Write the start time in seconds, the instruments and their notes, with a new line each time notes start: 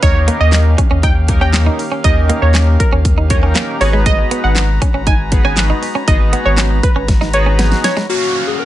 Already playing: pipe organ C#4 F5
0.02 sub bass D#2, pipe organ D#3 A#3 G4, analog polysynth A#3 C#4 D#4 G4 A#4, clean electric guitar D#4, synth pluck C#5, kick, closed hi-hat
0.15 muted clean electric guitar stroke
0.28 clean electric guitar A#3, closed hi-hat
0.40 sub bass D#2, synth pluck D#5
0.52 muted clean electric guitar stroke, snare, clap, closed hi-hat
0.78 clean electric guitar C#4, kick, closed hi-hat
0.91 sub bass D#2, clean electric guitar C#4
1.03 clean electric guitar D#4, synth pluck G5, kick, closed hi-hat
1.28 analog polysynth A#3 C#4 D#4 G4 A#4, muted clean electric guitar stroke, kick, closed hi-hat
1.41 clean electric guitar C#4, synth pluck G5
1.53 snare, clap, closed hi-hat
1.66 clean electric guitar D#4
1.79 muted clean electric guitar stroke, open hi-hat
1.92 clean electric guitar C#4
2.04 sub bass D#2, analog polysynth A#3 C#4 D#4 G4 A#4, clean electric guitar D#4, synth pluck D#5, kick, closed hi-hat
2.29 clean electric guitar A#3, closed hi-hat
2.42 sub bass D#2, synth pluck C#5, muted clean electric guitar stroke
2.54 clean electric guitar C#4, snare, clap, closed hi-hat
2.67 muted clean electric guitar stroke
2.80 synth pluck A#4, kick, closed hi-hat
2.93 sub bass D#2, clean electric guitar C#4
3.05 kick, closed hi-hat
3.18 clean electric guitar D#4
3.30 analog polysynth A#3 C#4 D#4 G4 A#4, synth pluck C#5, muted clean electric guitar stroke, kick, closed hi-hat
3.43 clean electric guitar C#4
3.55 clean electric guitar A#3, snare, clap, closed hi-hat
3.81 sub bass G#1, pipe organ G#3 D#4 F#4 B4 A#5, analog polysynth B3 D#4 F#4 G#4 B4, synth pluck C#5, muted clean electric guitar stroke, open hi-hat
3.93 clean electric guitar G#3
4.06 clean electric guitar G#3, synth pluck D#5, kick, closed hi-hat
4.19 muted clean electric guitar stroke
4.31 clean electric guitar B3, closed hi-hat
4.44 sub bass G#1, synth pluck F#5
4.55 muted clean electric guitar stroke, snare, clap, closed hi-hat
4.82 clean electric guitar C#4, kick, closed hi-hat
4.94 sub bass G#1, clean electric guitar C#4
5.07 clean electric guitar D#4, synth pluck G#5, kick, closed hi-hat
5.32 analog polysynth B3 D#4 F#4 G#4 B4, muted clean electric guitar stroke, kick, closed hi-hat
5.45 clean electric guitar C#4, synth pluck G#5
5.57 snare, clap, closed hi-hat
5.70 clean electric guitar D#4
5.83 muted clean electric guitar stroke, open hi-hat
5.95 clean electric guitar C#4
6.07 sub bass G#1, analog polysynth B3 D#4 F#4 G#4 B4, clean electric guitar D#4, synth pluck D#5, kick, closed hi-hat
6.33 clean electric guitar B3, closed hi-hat
6.46 sub bass G#1, synth pluck C#5, muted clean electric guitar stroke
6.57 clean electric guitar C#4, snare, clap, closed hi-hat
6.71 muted clean electric guitar stroke
6.83 synth pluck B4, kick, closed hi-hat
6.96 sub bass G#1, clean electric guitar C#4
7.08 kick, snare, closed hi-hat
7.21 clean electric guitar D#4, snare
7.33 analog polysynth B3 D#4 F#4 G#4 B4, synth pluck C#5, muted clean electric guitar stroke, closed hi-hat
7.46 clean electric guitar C#4
7.59 clean electric guitar B3, snare, closed hi-hat
7.72 snare
7.84 synth pluck C#5, muted clean electric guitar stroke, snare, closed hi-hat
7.97 clean electric guitar G#3, snare
8.09 analog polysynth A#3 C#4 F#4 F5, soft synth lead F#4, downlifter
8.47 soft synth lead G#4
8.60 soft synth lead A#4